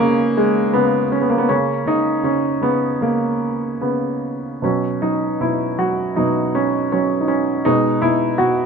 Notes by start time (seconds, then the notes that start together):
Already playing: G#3 A#3 B3 C#4 D#4
0.00 C#3
0.37 G#3
0.73 C#3 B3
1.12 C#4
1.21 B3
1.30 A#3
1.38 B3
1.49 C#3 A#3 C#4
1.86 C#3 D#4
2.23 C#3 C#4
2.61 C#3 B3
3.01 C#3 A#3
3.82 C#3 B3
4.62 B2 F#3 C#4
5.02 F#3 D#4
5.41 B2 E4
5.79 F#3 F#4
6.16 B2 F#3 D#4
6.55 C#4
6.92 F#3 C#4
7.21 D#4
7.28 C#4
7.65 B2 G#3 D#4
8.02 B2 E4
8.38 B2 F#4